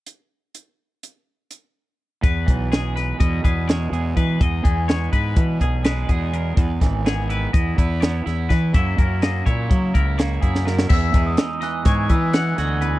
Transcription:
<<
  \new Staff \with { instrumentName = "Glockenspiel" } { \time 9/8 \key e \lydian \tempo 4. = 83 r1 r8 | r1 r8 | r1 r8 | r1 r8 |
r1 r8 | e'''8. dis'''8. fis'''8 gis'''8 e'''8 fis'''8 gis'''4 | }
  \new Staff \with { instrumentName = "Clean electric guitar" } { \time 9/8 \key e \lydian r1 r8 | b'4 gis'8 b'8 dis''8 b'8 cis''4 b'8 | dis''8 gis'8 cis''8 b'4 gis'8 b'8 gis'8 ais'8 | b'4 gis'8 b'8 dis''8 b'8 cis''4 b'8 |
e''8 ais'8 dis''8 cis''4 ais'8 cis''8 gis'8 ais'8 | e''4 r8 dis''8 cis''8 b'8 fis''8 dis''8 b'8 | }
  \new Staff \with { instrumentName = "Clean electric guitar" } { \clef bass \time 9/8 \key e \lydian << { r1 r8 | r4 gis8 b'4 gis'8 gis8 gis'4 | r4 gis8 b'4 gis'8 gis8 gis'4 | r4 b8 e'4 e'8 b8 e'4 |
<fis ais cis' e'>4 ais8 e'4 e'8 ais8 e'4~ | e'8 gis8 dis'4 gis4 gis8 fis'4 | } \\ { r1 r8 | e,8 e4. b,2 e,8 | e,8 e4. b,2 e,8 | e,8 e4. e,2 e,8 |
fis,8 fis4. cis2 fis,8 | e,4. e4 e4. e,8 | } >> }
  \new Staff \with { instrumentName = "Fingered electric bass" } { \clef bass \time 9/8 \key e \lydian r1 r8 | e,8 b,,4. e,8 e,4 e,8 e8 | e,8 e,4 gis,8 e8 b,,4 e,4 | e,8 gis,,4. e,8 e,4 e,8 e8 |
fis,8 fis,4 ais,8 fis8 cis,4 fis,4 | e,8 e,8 r4 gis,8 e4 d,4 | }
  \new DrumStaff \with { instrumentName = "Drums" } \drummode { \time 9/8 hh4 hh4 hh4 hh4. | <hh bd>8 <hh bd>8 <hh sn>8 <hh sn>8 <hh bd>8 <hh bd>8 <hh sn>8 hh8 <hh bd>8 | <hh bd>8 <hh bd>8 <hh sn>8 <hh bd>8 <hh bd>8 <hh bd>8 <hh sn>8 <hh bd>8 hh8 | <hh bd>8 <hh bd sn>8 <hh sn>8 hh8 <hh bd>8 <hh bd>8 <hh sn>8 <hh sn>8 <hh bd sn>8 |
<hh bd>8 <hh bd>8 <hh sn>8 <hh bd>8 <hh bd>8 <hh bd>8 <hh sn>8 <hh bd>16 sn16 sn16 sn16 | <cymc bd>8 <hh bd>8 <hh sn>8 <hh sn>8 <hh bd sn>8 <hh bd>8 <hh sn>8 <hh sn>8 hh8 | }
>>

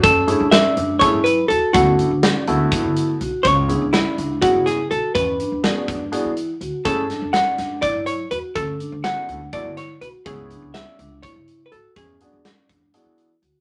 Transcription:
<<
  \new Staff \with { instrumentName = "Hollow-body jazz guitar" } { \time 7/8 \key fis \minor \tempo 4 = 123 a'4 e''4 cis''8 b'8 a'8 | fis'2 r4. | cis''4 e'4 fis'8 gis'8 a'8 | b'2 r4. |
a'4 fis''4 d''8 cis''8 b'8 | a'4 fis''4 d''8 cis''8 b'8 | gis'4 e''4 cis''8.~ cis''32 b'32 a'8 | gis'2. r8 | }
  \new Staff \with { instrumentName = "Grand piano" } { \time 7/8 \key fis \minor r8 <a cis' e' gis'>8 r4 <a cis' e' gis'>8 r4 | <a b e' fis'>8 r4 <a b e' fis'>4. r8 | r8 <b cis' e' gis'>8 r4 <b cis' e' gis'>8 r4 | r4 <b d' fis' gis'>8 r8 <b d' fis' gis'>8 r4 |
<a cis' e' gis'>8 r2. | r4 <a b e' fis'>8 r8 <a b e' fis'>8 r4 | <b cis' e' gis'>4. r2 | r8 <b d' fis' gis'>8 r4 <b d' fis' gis'>8 r4 | }
  \new Staff \with { instrumentName = "Vibraphone" } { \time 7/8 \key fis \minor cis'8 d'8 cis'8 d'8 e'4 fis'8 | cis'8 d'8 cis'8 d'8 e'4 fis'8 | cis'8 d'8 cis'8 d'8 e'4 fis'8 | cis'8 d'8 cis'8 d'8 e'4 fis'8 |
cis'8 d'8 cis'8 d'8 e'4 fis'8 | cis'8 d'8 cis'8 d'8 e'4 fis'8 | cis'8 d'8 cis'8 d'8 e'4 fis'8 | cis'8 d'8 cis'8 d'8 e'4 fis'8 | }
  \new Staff \with { instrumentName = "Upright bass" } { \clef bass \time 7/8 \key fis \minor fis,8. fis,8 r16 fis,8 r16 fis8. e,16 r16 | d,8. d,8 r16 d,8 r16 d8. b,,16 r16 | cis,8. r8. cis,8 r16 cis8. b,,16 r16 | e,8. e,8 r16 e,8 r16 e8. d,16 r16 |
fis,8. fis,8 r16 fis,8 r16 fis8. e,16 r16 | d,8. d,8 r16 d,8 r16 d8. b,,16 r16 | cis,8. cis,8 r16 cis,8 r16 cis8. gis,,16 r16 | e,8. e,8 r16 e,8 r16 e8. d,16 r16 | }
  \new DrumStaff \with { instrumentName = "Drums" } \drummode { \time 7/8 <hh bd>8 hh8 <hh sn>8 hh8 <hh bd>8 hh8 hh8 | <hh bd>8 hh8 <hh sn>8 hh8 <hh bd>8 hh8 hh8 | <hh bd>8 hh8 <hh sn>8 hh8 <hh bd>8 <hh sn>8 hh8 | <hh bd>8 hh8 <hh sn>8 <hh bd>8 hh8 hh8 hh8 |
<hh bd>8 <hh sn>8 <hh sn>8 <hh sn>8 <hh bd>8 hh8 hh8 | <hh bd>8 hh8 <hh sn>8 hh8 <hh bd>8 <hh sn>8 hh8 | <hh bd>8 hh8 <hh sn>8 hh8 <hh bd>8 hh8 hh8 | <hh bd>8 hh8 <hh sn>8 <hh bd>8 hh8 hh8 hh8 | }
>>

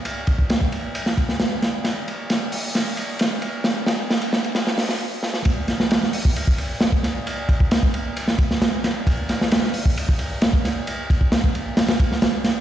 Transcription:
\new DrumStaff \with { instrumentName = "Drums" } \drummode { \time 4/4 \tempo 4 = 133 cymr8 <bd cymr>16 bd16 <cymr sn>16 bd16 cymr8 cymr16 sn16 <bd cymr>16 sn16 <cymr sn>8 <cymr sn>8 | <cymr sn>8 cymr8 <cymr sn>8 hho8 <cymr sn>8 cymr8 <cymr sn>8 cymr8 | <cymr sn>8 <cymr sn>8 <cymr sn>16 cymr16 sn16 cymr16 <cymr sn>16 sn16 <hho sn>16 sn16 r8 sn16 sn16 | <bd cymr>8 <cymr sn>16 sn16 <cymr sn>16 sn16 hho16 bd16 cymr16 bd16 cymr8 <cymr sn>16 bd16 <cymr sn>8 |
cymr8 <bd cymr>16 bd16 <cymr sn>16 bd16 cymr8 cymr16 sn16 <bd cymr>16 sn16 <cymr sn>8 <cymr sn>8 | <bd cymr>8 <cymr sn>16 sn16 <cymr sn>16 sn16 hho16 bd16 cymr16 bd16 cymr8 <cymr sn>16 bd16 <cymr sn>8 | cymr8 <bd cymr>16 bd16 <cymr sn>16 bd16 cymr8 <cymr sn>16 <cymr sn>16 <bd cymr>16 sn16 <cymr sn>8 <cymr sn>8 | }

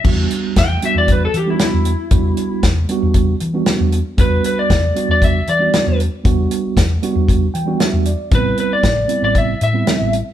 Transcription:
<<
  \new Staff \with { instrumentName = "Electric slide guitar" } { \time 4/4 \key e \minor \tempo 4 = 116 r4 g''8 e''16 d''16 b'16 a'16 g'16 e'16 e'4~ | e'4 r2. | b'8 b'16 d''4 d''16 e''8 d''4 r8 | r1 |
b'8 b'16 d''4 d''16 e''8 e''4 r8 | }
  \new Staff \with { instrumentName = "Tine electric piano" } { \time 4/4 \key e \minor r1 | r1 | r1 | r2 r8 g''8 e''8 d''8 |
r1 | }
  \new Staff \with { instrumentName = "Tine electric piano" } { \time 4/4 \key e \minor <g b d' fis'>4 r8 <g b d' fis'>8. r8 <g b d' fis'>8. r8 | <g b d' fis'>4 r8 <g b d' fis'>8. r8 <g b d' fis'>8. r8 | <g b d' fis'>4 r8 <g b d' fis'>8. r8 <g b d' fis'>8. r8 | <g b d' fis'>4 r8 <g b d' fis'>8. r8 <g b d' fis'>8. r8 |
<g b c' e'>4 r8 <g b c' e'>8. r8 <g b c' e'>8. r8 | }
  \new Staff \with { instrumentName = "Fingered electric bass" } { \clef bass \time 4/4 \key e \minor e,8 r8 e,8 r16 e,8. e8 r16 e,8 r16 | e,8 r8 e,8 r16 e,8. e8 r16 e,8 r16 | e,8 r8 e,8 r16 e,8. e8 r16 e,8 r16 | e,8 r8 e,8 r16 e,8. e8 r16 e,8 r16 |
a,,8 r8 a,,8 r16 a,,8. a,8 r16 a,,8 r16 | }
  \new DrumStaff \with { instrumentName = "Drums" } \drummode { \time 4/4 <cymc bd>8 hh8 <hh bd sn>8 hh8 <hh bd>8 hh8 <hh sn>8 hh8 | <hh bd>8 hh8 <hh bd sn>8 hh8 <hh bd>8 hh8 <hh sn>8 hh8 | <hh bd>8 hh8 <hh bd sn>8 hh8 <hh bd>8 hh8 <hh sn>8 hh8 | <hh bd>8 hh8 <hh bd sn>8 hh8 <hh bd>8 hh8 <hh sn>8 hh8 |
<hh bd>8 hh8 <hh bd sn>8 hh8 <hh bd>8 hh8 <hh sn>8 hh8 | }
>>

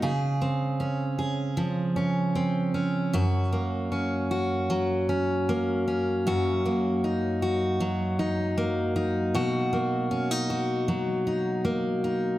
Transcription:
\new Staff \with { instrumentName = "Steel-string acoustic guitar" } { \time 4/4 \key des \major \tempo 4 = 78 <des aes'>8 c'8 des'8 aes'8 f8 des'8 c'8 des'8 | <ges, ges'>8 bes8 des'8 ges'8 ges8 des'8 bes8 des'8 | <ges, ges'>8 bes8 ees'8 ges'8 ges8 ees'8 bes8 ees'8 | <ces ges'>8 bes8 des'16 ees'16 ges'8 ges8 ees'8 bes8 ees'8 | }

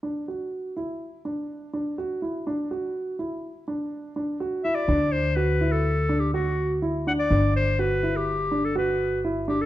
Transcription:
<<
  \new Staff \with { instrumentName = "Clarinet" } { \time 5/4 \key d \mixolydian \tempo 4 = 124 r1 r4 | r1 r8 e''16 d''16~ | d''8 c''8 b'8. a'4 g'16 fis'4 r8 fis''16 d''16~ | d''8 c''8 b'8. g'4 a'16 b'4 r8 g'16 a'16 | }
  \new Staff \with { instrumentName = "Grand piano" } { \time 5/4 \key d \mixolydian d'8 fis'4 e'4 d'4 d'8 fis'8 e'8 | d'8 fis'4 e'4 d'4 d'8 fis'8 e'8 | d'4 fis'8 e'4 d'8 fis'4 e'8 d'8 | d'4 fis'8 e'4 d'8 fis'4 e'8 d'8 | }
  \new Staff \with { instrumentName = "Upright bass" } { \clef bass \time 5/4 \key d \mixolydian r1 r4 | r1 r4 | d,1~ d,4 | g,,1~ g,,4 | }
>>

